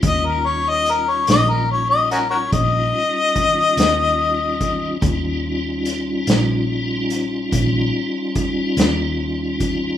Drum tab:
HH |x-xx-xx-xx-x|x-xx-xx-xx-x|
SD |---o-----o--|---o-----o--|
BD |o-----o-o--o|o-----o-o--o|